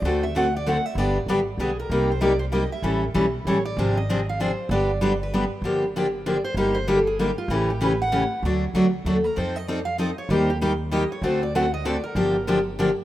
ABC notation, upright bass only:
X:1
M:3/4
L:1/8
Q:"Swing" 1/4=193
K:Gphr
V:1 name="Upright bass" clef=bass
D,,6 | G,,,2 A,,,2 =B,,,2 | C,,6 | =A,,,2 =B,,,2 A,,,2 |
A,,,6 | G,,,6 | [K:Gm] G,,,6 | G,,,6 |
A,,,6 | D,,2 D,,2 E,,2 | F,,6 | E,,6 |
D,,6 | G,,,6 |]